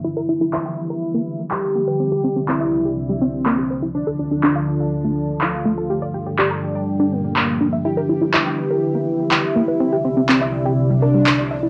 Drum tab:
CP |--x---x-|--x---x-|--x---x-|--x---x-|

CP |--x---x-|--x---x-|